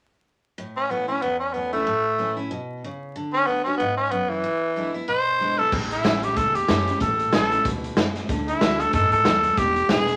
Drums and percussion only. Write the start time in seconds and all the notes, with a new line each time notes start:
5.72 kick, crash
5.91 closed hi-hat
6.05 snare, closed hi-hat
6.23 closed hi-hat
6.36 kick, closed hi-hat
6.55 closed hi-hat
6.68 snare, closed hi-hat
6.87 closed hi-hat
7.00 kick, closed hi-hat
7.19 closed hi-hat
7.33 snare, closed hi-hat
7.52 closed hi-hat
7.65 kick, closed hi-hat
7.84 closed hi-hat
7.97 snare, closed hi-hat
8.16 snare, closed hi-hat
8.29 kick, closed hi-hat
8.48 closed hi-hat
8.61 snare, closed hi-hat
8.80 closed hi-hat
8.93 kick, closed hi-hat
9.12 closed hi-hat
9.25 snare, closed hi-hat
9.43 closed hi-hat
9.57 kick, closed hi-hat
9.76 closed hi-hat
9.89 snare, closed hi-hat
10.08 closed hi-hat